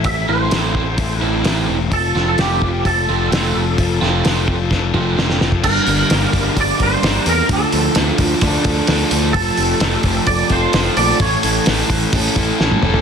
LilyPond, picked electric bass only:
\new Staff \with { instrumentName = "Picked electric bass" } { \clef bass \time 4/4 \key f \major \tempo 4 = 129 a,,8 a,,8 a,,8 a,,8 a,,8 a,,8 a,,8 e,,8 | f,,8 f,,8 r8 f,,8 f,,8 f,,8 f,,8 f,,8 | r8 f,,8 f,,8 f,,8 f,,8 f,,8 f,,8 f,,8 | g,,8 g,,8 g,,8 g,,8 g,,8 g,,8 g,,8 e,8 |
d,8 d,8 d,8 d,8 d,8 d,8 d,8 d,8 | r8 f,,8 f,,8 f,,8 f,,8 f,,8 f,,8 bes,,8 | a,,8 a,,8 a,,8 a,,8 a,,8 a,,8 a,,8 f,,8 | }